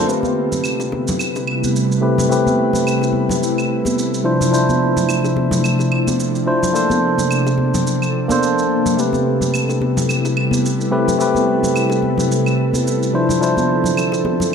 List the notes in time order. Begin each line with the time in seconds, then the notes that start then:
Already playing: A#3 D4 C5
0.06 C3 G3 A3 C4 E4 G4 B4, shaker
0.23 high conga, shaker
0.52 low conga, shaker
0.64 claves, shaker
0.80 high bongo, shaker
0.92 high bongo, high conga
1.08 low conga, shaker
1.19 claves, shaker
1.36 high bongo, shaker
1.47 claves
1.64 high conga, shaker
1.76 shaker
1.92 shaker
2.01 A3 C4 G4 B4
2.18 low conga, shaker
2.29 A3 C4 G4 B4, shaker
2.47 high conga, shaker
2.73 low conga, shaker
2.87 claves, shaker
3.02 high bongo, shaker
3.13 high conga
3.29 low conga, shaker
3.43 shaker
3.58 claves, shaker
3.85 high bongo, high conga, shaker
3.99 shaker
4.14 shaker
4.24 F3 D4 E4 C5
4.41 low conga, shaker
4.51 F3 D4 E4 C5, shaker
4.69 high conga, shaker
4.97 low conga, shaker
5.09 claves, shaker
5.24 high bongo, shaker
5.36 high bongo, high conga
5.51 low conga, shaker
5.64 claves, shaker
5.79 high bongo, shaker
5.92 claves
6.07 high conga, shaker
6.20 shaker
6.35 shaker
6.46 F3 D4 E4 C5
6.63 low conga, shaker
6.73 A#3 D4 A4 C5, shaker
6.90 high conga, shaker
7.18 low conga, shaker
7.31 claves, shaker
7.47 high bongo, shaker
7.58 high bongo, high conga
7.74 low conga, shaker
7.87 shaker
8.02 claves, shaker
8.28 A#3 D4 A4 C5, high bongo, high conga, shaker
8.43 shaker
8.59 shaker
8.86 low conga, shaker
8.97 G3 A3 C4 E4 G4 B4, shaker
9.13 high conga, shaker
9.41 low conga, shaker
9.54 claves, shaker
9.69 high bongo, shaker
9.81 high bongo, high conga
9.97 low conga, shaker
10.09 claves, shaker
10.25 high bongo, shaker
10.37 claves
10.51 high conga, shaker
10.66 shaker
10.81 shaker
10.91 A3 C4 G4 B4
11.08 low conga, shaker
11.19 A3 C4 G4 B4, shaker
11.35 high conga, shaker
11.63 low conga, shaker
11.76 claves, shaker
11.90 high bongo, shaker
12.02 high conga
12.18 low conga, shaker
12.32 shaker
12.46 claves, shaker
12.73 high bongo, high conga, shaker
12.87 shaker
13.03 shaker
13.13 D3 F3 C4 D4 E4 C5
13.29 low conga, shaker
13.40 F3 D4 E4 C5, shaker
13.57 high conga, shaker
13.84 low conga, shaker
13.97 claves, shaker
14.12 high bongo, shaker
14.25 high bongo, high conga
14.40 low conga, shaker